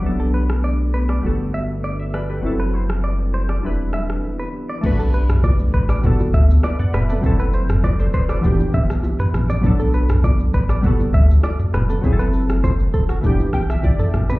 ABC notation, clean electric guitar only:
X:1
M:4/4
L:1/16
Q:1/4=100
K:Em
V:1 name="Clean electric guitar"
z A B z d z B d z2 e z d z B A | z B c z d z c d z2 e z2 B z d | z A B z d z B d z2 e z d z B A | z B c z d z c d z2 e z2 B z d |
z A B z d z B d z2 e z d z B A | z B A z c z A F z2 G z2 A z B |]